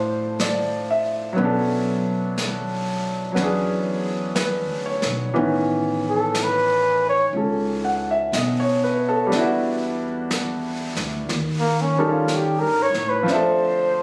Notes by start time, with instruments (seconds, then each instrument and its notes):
Already playing: upright bass A2, grand piano F3 C4 D4 E4 A4 C5
0.40 grand piano D5, brush sweep, snare, hi-hat pedal
0.91 grand piano E5
1.33 grand piano F#3 B3
1.38 upright bass B1, grand piano C#4 D4, brush sweep
1.45 grand piano A4
2.38 brush sweep, snare, hi-hat pedal
3.32 grand piano F#3 B3
3.36 upright bass E2, grand piano C#4, brush sweep, snare
3.41 grand piano D4 G#4
4.35 grand piano B4, brush sweep, snare, hi-hat pedal
4.70 upright bass D2
4.86 grand piano C#5
5.02 upright bass B1, snare
5.34 upright bass A1, grand piano D#3 E3 B3 C#4, brush sweep
6.09 muted trumpet A4
6.35 brush sweep, snare, hi-hat pedal
6.43 muted trumpet B4
7.09 muted trumpet C#5
7.33 upright bass C#2, grand piano C#4 A4, brush sweep
7.85 grand piano F#5
8.11 grand piano E5
8.32 upright bass B2, grand piano D#5, brush sweep, snare, hi-hat pedal
8.60 grand piano C#5
8.84 grand piano B4
9.09 grand piano A4
9.27 grand piano G3 B3
9.32 upright bass E2, grand piano D4, brush sweep, snare
9.36 grand piano E4 F#4
10.31 brush sweep, snare, hi-hat pedal
10.97 upright bass D2, snare
11.29 upright bass D#2, brush sweep, snare
11.59 muted trumpet A#3
11.81 muted trumpet C#4
11.98 grand piano G3 C#4 D#4 A4 A#4
12.10 muted trumpet F4
12.28 brush sweep, snare, hi-hat pedal
12.35 muted trumpet G4
12.59 upright bass G2, muted trumpet A#4
12.83 muted trumpet C#5
12.93 upright bass A2, snare
13.10 muted trumpet B4
13.23 upright bass D2, grand piano F3 C4
13.28 grand piano D4 E5, brush sweep, snare
13.34 grand piano A4, muted trumpet C5